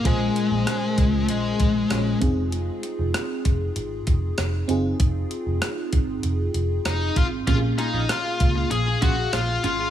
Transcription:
<<
  \new Staff \with { instrumentName = "Clean electric guitar" } { \time 4/4 \key bes \minor \tempo 4 = 97 r1 | r1 | r1 | <des' f' aes'>16 r16 <des' f' aes'>16 <des' f' aes'>16 r4. <des' f' aes'>16 r8. <des' f' aes'>16 <des' f' aes'>16 | }
  \new Staff \with { instrumentName = "FM electric piano" } { \time 4/4 \key bes \minor <des' f' aes' c''>2. <des' f' aes' des''>8 <c' ees' f' aes'>8~ | <c' ees' f' aes'>2.~ <c' ees' f' aes'>8 <c' ees' f' aes'>8~ | <c' ees' f' aes'>2.~ <c' ees' f' aes'>8 r8 | <bes des' g' aes' f''>1 | }
  \new Staff \with { instrumentName = "FM electric piano" } { \clef bass \time 4/4 \key bes \minor bes,4. r2 r8 | r1 | r1 | bes,4. r2 r8 | }
  \new Staff \with { instrumentName = "Lead electric guitar" } { \time 4/4 \key bes \minor aes2 aes4. r8 | r1 | r2. ees'8 f'8 | f'8 ees'8 f'4 aes'8 ges'8 f'8 f'8 | }
  \new Staff \with { instrumentName = "Picked electric bass" } { \clef bass \time 4/4 \key bes \minor bes,,8 r16 bes,,16 r8 des,8 bes,,8 bes,,8 bes,,8 f,,8~ | f,,8 r16 f,,16 r8 f,,8 aes,,8 f,,8 f,,8 ges,,8 | f,,8 r16 f,,16 r8 aes,,8 f,,8 f,,8 f,,8 aes,,8 | bes,,8 r16 bes,,16 r8 des,8 bes,,8 bes,,8 bes,,8 aes,,8 | }
  \new DrumStaff \with { instrumentName = "Drums" } \drummode { \time 4/4 <hh bd>8 hh8 <hh ss>8 <hh bd>8 hh8 <hh bd>8 <hh ss>8 <hh bd>8 | hh8 hh8 <hh ss>8 <hh bd>8 hh8 <hh bd>8 <hh ss>8 hh8 | <hh bd>8 hh8 <hh ss>8 <hh bd>8 hh8 hh8 <hh ss>8 <hh bd>8 | <hh bd>8 hh8 <hh ss>8 <hh bd>8 hh8 <hh bd>8 <hh ss>8 hh8 | }
>>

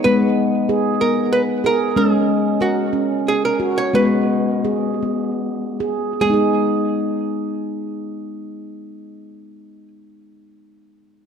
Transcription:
<<
  \new Staff \with { instrumentName = "Hollow-body jazz guitar" } { \time 3/4 \key gis \minor \tempo 4 = 80 b'4. ais'8 b'8 ais'8 | gis'4 fis'4 gis'16 ais'8 cis''16 | b'2~ b'8 r8 | gis'2.~ |
gis'2. | }
  \new Staff \with { instrumentName = "Handpan" } { \time 3/4 \key gis \minor b4 gis'8 b4 gis'8 | cis'4 ais'8 cis'4 fis'8 | b4 gis'8 b4 gis'8 | r2. |
r2. | }
  \new Staff \with { instrumentName = "Handpan" } { \clef bass \time 3/4 \key gis \minor gis8 r2 r8 | gis8 r2 r8 | gis8 r2 r8 | <gis b dis' gis'>2.~ |
<gis b dis' gis'>2. | }
>>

